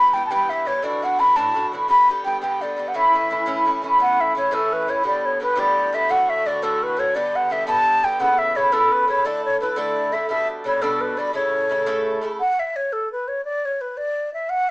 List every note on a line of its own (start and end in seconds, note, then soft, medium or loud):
0.00 0.13 G2 medium
0.00 0.14 E3 medium
0.00 0.15 B3 medium
0.00 0.15 G4 medium
0.00 0.15 B5 medium
0.14 0.29 G2 medium
0.14 0.30 E3 medium
0.14 0.31 B3 medium
0.14 0.31 G4 medium
0.14 0.26 G5 medium
0.26 0.32 A5 medium
0.31 0.49 G2 medium
0.31 0.49 E3 medium
0.31 0.50 B3 medium
0.31 0.51 G4 medium
0.31 0.51 G5 medium
0.50 0.64 G2 medium
0.50 0.66 E3 medium
0.50 0.66 B3 medium
0.50 0.67 G4 medium
0.50 0.69 E5 medium
0.65 0.82 G2 medium
0.65 0.82 E3 medium
0.65 0.83 B3 medium
0.65 0.84 G4 medium
0.65 0.85 C#5 medium
0.82 1.01 A2 medium
0.82 1.02 E3 medium
0.82 1.03 D4 medium
0.82 1.04 F#4 medium
0.82 1.05 D5 medium
1.02 1.18 A2 medium
1.02 1.18 E3 medium
1.02 1.20 D4 medium
1.02 1.20 F#4 medium
1.02 1.21 F#5 medium
1.19 1.35 A2 medium
1.19 1.35 E3 medium
1.19 1.36 D4 medium
1.19 1.37 F#4 medium
1.19 1.38 B5 medium
1.36 1.53 A2 medium
1.36 1.55 E3 medium
1.36 1.56 D4 medium
1.36 1.56 F#4 medium
1.36 1.66 A5 medium
1.54 1.71 A2 medium
1.54 1.72 E3 medium
1.54 1.73 D4 medium
1.54 1.73 F#4 medium
1.72 1.88 A2 soft
1.72 1.88 E3 medium
1.72 1.89 D4 medium
1.72 1.90 F#4 medium
1.88 2.07 G2 medium
1.88 2.08 D3 medium
1.88 2.09 B3 medium
1.88 2.09 G4 medium
1.88 2.09 B5 loud
2.08 2.23 G2 medium
2.08 2.25 D3 medium
2.08 2.25 B3 medium
2.08 2.26 G4 medium
2.24 2.40 G2 medium
2.24 2.41 D3 medium
2.24 2.42 B3 medium
2.24 2.42 G4 medium
2.24 2.41 G5 medium
2.42 2.60 G2 medium
2.42 2.61 D3 medium
2.42 2.62 B3 medium
2.42 2.62 G4 medium
2.42 2.63 G5 medium
2.61 2.75 G2 medium
2.61 2.76 D3 medium
2.61 2.78 B3 medium
2.61 2.78 G4 medium
2.61 2.90 D5 medium
2.77 2.93 G2 soft
2.77 2.94 D3 medium
2.77 2.94 B3 soft
2.77 2.95 G4 medium
2.88 2.97 F#5 medium
2.94 3.12 A2 medium
2.94 3.13 E3 medium
2.94 3.14 C#4 medium
2.94 3.14 E4 medium
2.94 3.67 E5 medium
3.13 3.29 A2 medium
3.13 3.30 E3 medium
3.13 3.30 C#4 medium
3.13 3.31 E4 medium
3.30 3.45 A2 medium
3.30 3.45 E3 medium
3.30 3.46 C#4 medium
3.30 3.47 E4 medium
3.46 3.64 A2 medium
3.46 3.65 E3 medium
3.46 3.66 C#4 medium
3.46 3.67 E4 medium
3.65 3.81 A2 medium
3.65 3.82 E3 medium
3.65 3.83 C#4 medium
3.65 3.84 E4 medium
3.82 3.97 A2 medium
3.82 3.98 E3 medium
3.82 3.99 C#4 medium
3.82 3.99 E4 medium
3.98 4.34 A2 medium
3.98 4.35 E3 medium
3.98 4.36 C#4 medium
3.98 4.36 E4 medium
3.98 4.22 F#5 medium
4.21 4.37 E5 medium
4.35 4.50 A2 medium
4.35 4.51 E3 medium
4.35 4.51 C#4 medium
4.35 4.52 E4 medium
4.35 4.56 C#5 medium
4.51 4.86 A2 medium
4.51 4.87 E3 medium
4.51 4.88 C#4 medium
4.51 4.88 E4 medium
4.51 4.74 A4 medium
4.73 4.91 B4 medium
4.87 5.02 A2 soft
4.87 5.03 E3 medium
4.87 5.04 C#4 medium
4.87 5.05 E4 medium
4.87 5.06 C#5 medium
5.03 5.39 A2 medium
5.03 5.40 D3 medium
5.03 5.40 B3 medium
5.03 5.41 G4 medium
5.03 5.27 D5 medium
5.25 5.42 C#5 medium
5.40 5.54 A2 medium
5.40 5.55 D3 medium
5.40 5.56 B3 medium
5.40 5.56 G4 medium
5.40 5.61 B4 medium
5.56 5.91 A2 medium
5.56 5.93 D3 medium
5.56 5.93 B3 medium
5.56 5.93 G4 medium
5.56 5.96 D5 medium
5.92 6.08 A2 medium
5.92 6.08 D3 medium
5.92 6.10 B3 medium
5.92 6.11 G4 medium
5.92 6.12 E5 medium
6.09 6.44 A2 medium
6.09 6.45 D3 medium
6.09 6.46 A3 medium
6.09 6.47 F#4 medium
6.09 6.31 F#5 loud
6.29 6.48 E5 medium
6.45 6.61 A2 medium
6.45 6.62 D3 medium
6.45 6.62 A3 medium
6.45 6.63 F#4 medium
6.45 6.65 D5 medium
6.62 6.95 A2 medium
6.62 6.97 D3 medium
6.62 6.98 A3 medium
6.62 6.98 F#4 medium
6.62 6.85 A4 medium
6.83 7.01 B4 medium
6.97 7.14 A2 medium
6.97 7.14 D3 medium
6.97 7.16 A3 medium
6.97 7.16 F#4 medium
6.97 7.17 C#5 medium
7.15 7.49 G2 medium
7.15 7.50 D3 medium
7.15 7.51 B3 medium
7.15 7.52 G4 medium
7.15 7.37 D5 medium
7.36 7.53 F#5 medium
7.50 7.65 G2 medium
7.50 7.66 D3 medium
7.50 7.67 B3 medium
7.50 7.67 G4 medium
7.50 7.67 E5 medium
7.67 8.02 G2 medium
7.67 8.02 D3 medium
7.67 8.04 B3 medium
7.67 8.04 G4 loud
7.67 8.06 A5 loud
8.03 8.19 G2 medium
8.03 8.20 D3 medium
8.03 8.19 B3 medium
8.03 8.21 G4 medium
8.03 8.22 G5 medium
8.20 8.54 C#3 medium
8.20 8.55 B3 medium
8.20 8.56 E4 medium
8.20 8.58 A4 medium
8.20 8.40 F#5 loud
8.39 8.58 E5 medium
8.55 8.71 C#3 medium
8.55 8.71 B3 medium
8.55 8.72 E4 medium
8.55 8.73 A4 medium
8.55 8.74 C#5 medium
8.72 9.06 C#3 medium
8.72 9.07 B3 medium
8.72 9.08 E4 medium
8.72 8.94 A4 medium
8.72 9.10 A4 medium
8.92 9.08 B4 medium
9.07 9.24 C#3 medium
9.07 9.25 B3 medium
9.07 9.25 E4 soft
9.07 9.25 A4 medium
9.07 9.27 C#5 medium
9.24 9.59 D3 medium
9.24 9.61 A3 medium
9.24 9.61 E4 medium
9.24 9.63 A4 medium
9.24 9.45 D5 medium
9.45 9.60 C#5 medium
9.60 9.75 D3 medium
9.60 9.76 A3 medium
9.60 9.76 E4 medium
9.60 9.77 A4 medium
9.60 9.79 B4 medium
9.76 10.11 D3 medium
9.76 10.13 A3 medium
9.76 10.13 E4 medium
9.76 10.15 A4 medium
9.76 10.14 D5 medium
10.12 10.28 D3 medium
10.12 10.29 A3 soft
10.12 10.30 E4 medium
10.12 10.30 A4 medium
10.12 10.30 E5 medium
10.29 10.63 B2 medium
10.29 10.64 G3 medium
10.29 10.65 D4 medium
10.29 10.67 A4 medium
10.29 10.48 E5 medium
10.64 10.80 B2 medium
10.64 10.81 G3 medium
10.64 10.82 D4 medium
10.64 10.82 A4 medium
10.64 10.84 C#5 medium
10.81 11.16 B2 medium
10.81 11.17 G3 medium
10.81 11.18 D4 medium
10.81 11.02 A4 medium
10.81 11.19 A4 medium
11.01 11.20 B4 medium
11.17 11.33 B2 medium
11.17 11.33 G3 medium
11.17 11.34 D4 medium
11.17 11.34 A4 medium
11.17 11.34 D5 medium
11.33 11.68 C#3 medium
11.33 11.70 A3 medium
11.33 11.70 E4 medium
11.33 11.72 A4 medium
11.33 12.19 C#5 medium
11.69 11.85 C#3 medium
11.69 11.86 A3 medium
11.69 11.86 E4 medium
11.69 11.87 A4 medium
11.86 12.20 C#3 medium
11.86 12.22 A3 loud
11.86 12.22 E4 medium
11.86 12.24 A4 loud
12.21 12.39 C#3 medium
12.21 12.39 A3 medium
12.21 12.40 E4 medium
12.21 12.40 A4 medium
12.40 12.61 F#5 medium
12.60 12.78 E5 medium
12.76 12.94 C#5 medium
12.93 13.11 A4 medium
13.12 13.30 B4 medium
13.28 13.44 C#5 medium
13.45 13.67 D5 medium
13.65 13.83 C#5 medium
13.81 13.99 B4 medium
13.97 14.33 D5 medium
14.34 14.51 E5 medium
14.50 14.71 F#5 medium